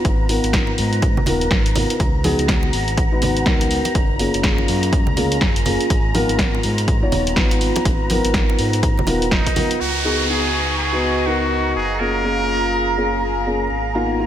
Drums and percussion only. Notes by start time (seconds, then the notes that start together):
0.05 kick, closed hi-hat
0.29 open hi-hat
0.44 closed hi-hat
0.53 kick, snare, closed hi-hat
0.67 muted conga
0.78 open hi-hat
0.93 closed hi-hat
1.02 kick, closed hi-hat
1.17 low conga
1.26 open hi-hat, low conga
1.41 closed hi-hat
1.51 kick, snare
1.66 closed hi-hat
1.75 open hi-hat, low conga
1.90 closed hi-hat
2.00 kick, closed hi-hat
2.24 open hi-hat, high conga
2.39 closed hi-hat
2.48 kick, snare, closed hi-hat
2.63 muted conga
2.73 open hi-hat
2.88 closed hi-hat
2.97 kick, closed hi-hat
3.22 open hi-hat, low conga
3.37 closed hi-hat
3.46 kick, snare
3.61 closed hi-hat, muted conga
3.71 open hi-hat
3.85 closed hi-hat, muted conga
3.95 kick, closed hi-hat
4.19 open hi-hat
4.34 closed hi-hat
4.43 kick, snare, closed hi-hat
4.58 muted conga
4.68 open hi-hat
4.83 closed hi-hat
4.93 kick, closed hi-hat
5.07 low conga
5.17 open hi-hat, low conga
5.32 closed hi-hat
5.41 kick, snare
5.56 closed hi-hat
5.66 open hi-hat, low conga
5.81 closed hi-hat
5.90 kick, closed hi-hat
6.14 open hi-hat, high conga
6.29 closed hi-hat
6.39 kick, snare, closed hi-hat
6.55 muted conga
6.63 open hi-hat
6.78 closed hi-hat
6.88 kick, closed hi-hat
7.12 open hi-hat, low conga
7.27 closed hi-hat
7.36 kick, snare
7.51 closed hi-hat, muted conga
7.61 open hi-hat
7.76 closed hi-hat, muted conga
7.85 kick, closed hi-hat
8.10 open hi-hat, high conga
8.25 closed hi-hat
8.34 kick, snare, closed hi-hat
8.50 muted conga
8.59 open hi-hat
8.73 closed hi-hat
8.83 kick, closed hi-hat
8.98 high conga, low conga
9.07 open hi-hat, muted conga, low conga
9.22 closed hi-hat
9.31 kick, snare
9.46 kick, closed hi-hat
9.56 open hi-hat, high conga, low conga
9.71 closed hi-hat